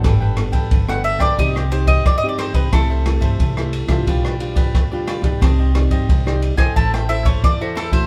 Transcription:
Already playing: nylon-string guitar B3 D4 A4
0.03 upright bass G1, nylon-string guitar G3, cavaquinho D4 A4 B4 G5, kick, cross-stick, ride
0.20 cavaquinho A4 B4 G5
0.37 nylon-string guitar B3 D4 A4, muted cavaquinho stroke, cross-stick, ride
0.52 upright bass D2, cavaquinho A4 B4 G5, kick, ride
0.71 upright bass G1, nylon-string guitar D3, kick, ride
0.88 nylon-string guitar B3 D4 A4, cavaquinho A4 B4 G5, mandolin F#5, cross-stick
1.04 mandolin E5, muted cavaquinho stroke, ride
1.19 upright bass B1, cavaquinho A4 B4 G5, mandolin D5, kick, cross-stick, ride
1.38 upright bass C2, nylon-string guitar C3 C4 D#4 G4, cavaquinho D#4 G4 C5 D#5, mandolin D#5, kick, ride
1.55 cavaquinho G4 C5 D#5, mandolin G4, cross-stick
1.71 nylon-string guitar C4 D#4 G4, cavaquinho D#4 G4 C5 D#5, mandolin C5, ride
1.87 cavaquinho G4 C5 D#5, mandolin D#5, kick, ride
2.06 upright bass G2, mandolin D5, kick, cross-stick, ride
2.18 mandolin D#5
2.23 nylon-string guitar C4 D#4 G4, cavaquinho G4 C5 D#5
2.29 mandolin D5
2.38 cavaquinho D#4 G4 C5 D#5, mandolin C5, cross-stick, ride
2.53 upright bass C2, cavaquinho G4 C5 D#5, mandolin B4, kick, ride
2.72 upright bass C2, nylon-string guitar C3 G3 A3 E4, cavaquinho E4 A4 C5 E5, mandolin A4, kick, cross-stick, ride
2.90 cavaquinho A4 C5 E5
3.05 nylon-string guitar G3 A3 E4, muted cavaquinho stroke, cross-stick, ride
3.20 upright bass G2, cavaquinho A4 C5 E5, kick, ride
3.40 upright bass C2, nylon-string guitar G2, kick, ride
3.57 nylon-string guitar G3 A3 E4, cavaquinho A4 C5 E5, cross-stick
3.73 muted cavaquinho stroke, ride
3.87 upright bass C2, nylon-string guitar G3 D4 F4, cavaquinho A4 C5 E5, kick, cross-stick, ride
4.07 upright bass B1, nylon-string guitar B2, cavaquinho F4 G4 B4 D5, kick, ride
4.25 cavaquinho G4 B4 D5, cross-stick
4.40 nylon-string guitar G3 D4 F4, cavaquinho F4 G4 B4 D5, ride
4.56 cavaquinho G4 B4 D5, kick, ride
4.75 upright bass D2, nylon-string guitar B2, kick, cross-stick, ride
4.92 nylon-string guitar G3 D4 F4, cavaquinho G4 B4 D5
5.07 cavaquinho F4 G4 B4 D5, cross-stick, ride
5.22 upright bass B1, nylon-string guitar D#4 G4 D5, cavaquinho G4 B4 D5, kick, ride
5.41 upright bass C2, nylon-string guitar C4, cavaquinho D4 G4 C5 D#5, kick, cross-stick, ride
5.59 cavaquinho G4 C5 D#5
5.74 nylon-string guitar D#4 G4 D5, muted cavaquinho stroke, cross-stick, ride
5.89 upright bass G2, cavaquinho G4 C5 D#5, kick, ride
6.09 upright bass C2, nylon-string guitar G3, kick, ride
6.26 nylon-string guitar D#4 G4 D5, cavaquinho G4 C5 D#5, cross-stick
6.42 muted cavaquinho stroke, ride
6.56 upright bass B1, nylon-string guitar E4 A4 C5, cavaquinho G4 C5 D#5, mandolin G#5, kick, cross-stick, ride
6.76 upright bass A1, nylon-string guitar A3, cavaquinho E4 A4 C5 E5, mandolin A5, kick, ride
6.94 cavaquinho A4 C5 E5, mandolin G5, cross-stick
7.09 nylon-string guitar E4 A4 C5, cavaquinho E4 A4 C5 E5, mandolin E5, ride
7.25 cavaquinho A4 C5 E5, mandolin C#5, kick, ride
7.43 upright bass E2, nylon-string guitar E3, mandolin D5, kick, cross-stick, ride
7.61 nylon-string guitar E4 A4 C5, mandolin F#4, cavaquinho A4 C5 E5
7.75 cavaquinho E4 A4 C5 E5, mandolin A4, cross-stick, ride
7.91 upright bass A1, nylon-string guitar A3 E4 F#4, cavaquinho A4 C5 E5, mandolin C5, kick, ride

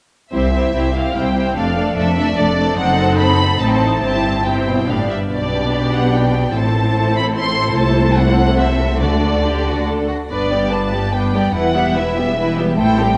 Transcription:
0.32 double bass section C2, cello section C2, viola section C4 E4, violin section G4 C5 E5
0.53 viola section C4 E4, violin section G4 C5
0.74 double bass section C2, cello section C2, viola section C4 E4, violin section G4 C5
0.95 viola section C4 E4, violin section G4 C5 F5
1.15 double bass section C2, cello section C2, viola section C4 E4, violin section G4 C5 G5
1.36 viola section C4 E4, violin section G4 C5
1.56 double bass section F1, cello section F2, viola section A3 D4, violin section A4 D5 F5
1.77 viola section A3 D4, violin section A4 D5
1.96 double bass section F1, cello section F2, viola section A3 D4, violin section A4 D5 E5
2.17 viola section A3 D4, violin section A4 D5
2.37 double bass section F1, cello section F2, viola section A3 D4, violin section A4 D5
2.57 viola section A3 D4, violin section A4 D5
2.77 double bass section F#1, cello section F#2, viola section C4 D#4, violin section A4 C5 F#5
3.18 violin section B5
3.59 double bass section A1, cello section A2, viola section C4 D#4, violin section A4 C5 A5
3.67 violin section G5
3.73 violin section A5
4.01 double bass section G1, cello section G2, viola section C4 E4, violin section G4 C5 A5
4.45 cello section C3, viola section C4 E4, violin section G4 C5 G5
4.67 cello section B2
4.88 double bass section G1, cello section A2, viola section B3 D4, violin section G4 D5 F5
5.10 cello section G2, violin section E5
5.31 double bass section B1, cello section B2, viola section B3 D4, violin section G4 D5
5.93 violin section F#5
6.15 violin section G5
6.55 double bass section A1, cello section A2, viola section C4 E4, violin section A4 C5 A5
7.16 violin section B5
7.38 violin section C6
7.77 double bass section C2, cello section C3, viola section A3, violin section A5
8.17 violin section F#5
8.58 violin section E5
9.01 double bass section D2, cello section D3, viola section D4, violin section F#4 A4 D5
9.44 violin section G4
9.66 violin section F#4
9.87 violin section A4
10.08 violin section F#4
10.30 double bass section G1, cello section G2, viola section B3 D4, violin section B4 D5
10.51 viola section G3 B3, violin section G4 D5
10.71 viola section B3 D4, violin section B4 A5
10.93 viola section G3 B3, violin section G4 D5
11.13 viola section B3 D4, violin section B4 G5
11.34 viola section G3 B3, violin section G4 D5
11.54 double bass section E1, cello section E2, viola section E3 E4, violin section E4 B4 F#5
11.75 viola section G3 B3, violin section G4 E5
11.96 viola section E3 E4, violin section E4 B4 E5
12.16 viola section G3 B3, violin section G4 E5
12.37 viola section E3 E4, violin section E4 B4
12.57 viola section G3 B3, violin section G4 E5
12.78 double bass section A1, cello section A2, viola section A3 E4, violin section A4 C5 G5
12.99 viola section G3 C4, violin section G4 A4

